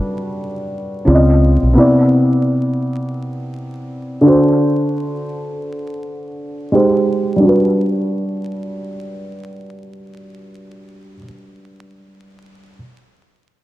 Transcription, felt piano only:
Already playing: G3 D4 F#4 B4
1.05 C#3 C4 F4 D5
1.15 D#5
1.73 C3 B3
1.77 E4 D5
4.21 D3 D4
4.25 F#4 C5
6.72 G#3 D#4 G4 C5
7.36 G3 D4
7.44 F#4
7.48 B4

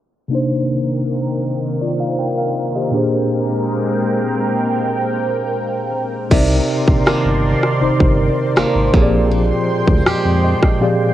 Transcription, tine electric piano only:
0.28 C3 A#3 D4
0.33 D#4 C5
1.81 F4 D5
2.00 F5
2.19 A#4 G5
2.38 F5
2.75 G4 D#5
2.91 A#2 A#3 D4 G4
2.96 G#4 C5
6.30 C3 C4 D#4 A#4 D5
7.80 C3 C4 D#4 A#4 C5
8.92 A#2 F3 C4 G4 G#4 C#5
9.02 D5
10.44 D#5
10.80 A#2 F3 C4 G4 G#4 D5 F5

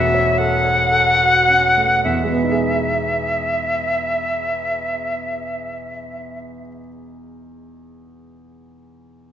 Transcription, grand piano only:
Already playing: E1 E2 E3 A3 C#4 F#4
0.14 C#5
0.40 A4
0.64 C#5
0.91 A4
1.18 F#4
1.48 C#4
1.77 A3
2.05 E2
2.14 B2
2.24 G#3
2.33 B3
2.43 D#4
2.52 G#4

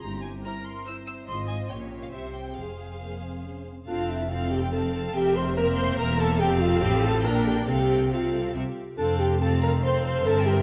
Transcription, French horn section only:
0.03 C4 E4
0.46 C4 E4
0.87 C4 E4
1.29 C4 F4
1.71 C#4 F4
2.13 C4 G4
2.56 C4 G#4
3.00 A#3
3.21 C4
3.44 C#4
3.66 C4
3.88 F4
4.09 E4
4.29 F4
4.50 G4
4.72 A4
4.94 A4
5.15 G4
5.36 C5
5.57 A#4
5.78 C5
5.98 A#4
6.19 A4
6.39 G4
6.60 F4
6.81 G4
7.03 A4
7.25 A#4
7.46 G4
7.68 G4
8.12 F4
8.98 A4
9.18 G4
9.40 A4
9.62 A#4
9.84 C5
10.05 C5
10.25 A4
10.46 G4

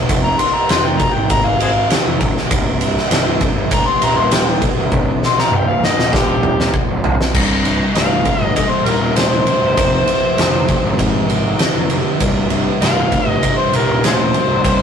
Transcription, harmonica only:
0.24 A#5
0.40 C6
0.54 A#5
0.70 C6
0.85 G5
0.99 A#5
1.13 G5
1.31 A#5
1.46 F5
1.62 G#4 C5 F5
3.74 A#5
3.87 C6
4.04 A#5
4.17 C6
4.34 G5
5.26 C6
5.41 A#5
5.56 G5
5.69 F5
5.85 D#5
6.14 G4
7.95 F5
8.56 D#5
8.70 C5
8.86 A#4
9.17 C5
12.82 F5
13.29 D#5
13.44 D#5
13.57 C5
13.75 A#4
14.05 F4 G#4 C5

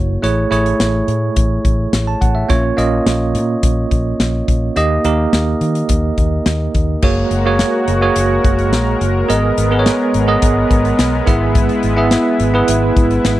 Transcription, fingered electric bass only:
Already playing: F#1
0.23 A1
0.51 A1
0.80 A1
1.08 A2
1.37 A1
1.65 A1
1.93 A1
2.22 A1
2.50 A#1
2.78 A#1
3.06 A#1
3.34 A#2
3.63 A#1
3.91 A#1
4.20 A#1
4.48 A#1
4.76 D#2
5.05 D#2
5.33 D#2
5.61 D#3
5.89 D#2
6.18 D#2
6.46 D#2
6.75 D#2
7.03 F#1
7.31 F#1
7.88 F#1
8.16 F#1
8.45 F#1
8.73 A#1
9.01 F#1
9.30 G#1
9.58 G#1
10.15 G#1
10.43 G#1
10.71 G#1
10.99 B1
11.28 G#1
11.84 G#1
12.40 G#1
12.69 G#1
12.96 G#1
13.25 G#1

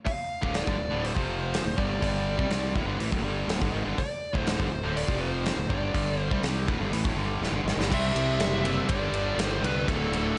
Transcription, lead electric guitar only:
0.06 F5
0.55 D5
1.06 C5
1.78 D5
2.04 D5
3.99 D5
4.49 C5
4.96 D5
5.21 C5
5.69 D5
6.21 C5
7.94 E5
8.89 D5
9.45 C5
9.65 B4
9.89 A4
10.13 A4

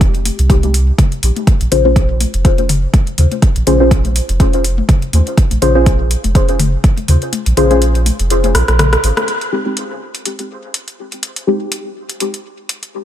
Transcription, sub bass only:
Already playing: F1
0.39 C2
1.23 A#1
1.61 A#1
1.72 A#1
2.34 F1
3.18 D#2
3.56 A#1
3.67 A#1
4.29 F1
5.13 D#2
5.51 A#1
5.62 A#1
6.24 F1
7.08 D#2
7.46 A#1
7.57 A#1
8.19 F1
8.55 A#1
8.68 A#1
9.03 G#1

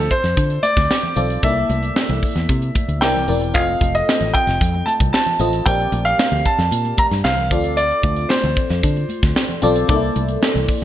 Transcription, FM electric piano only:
Already playing: C4 F4 A4 D5
1.16 C4 F4 A4 D5
1.43 A#3 D#4 A4 D5
1.49 E4
3.02 C4 E4 A#4 D5
3.28 C4 E4 A#4 D5
3.54 C4 F4 A4 D#5
5.39 C4 F4 A4 D#5
5.66 C4 G4 A#4 D5
7.51 C4 F4 A4 D5
9.62 C4 F4 A4 D5
9.88 A#3 D#4 A4 D5
9.95 E4

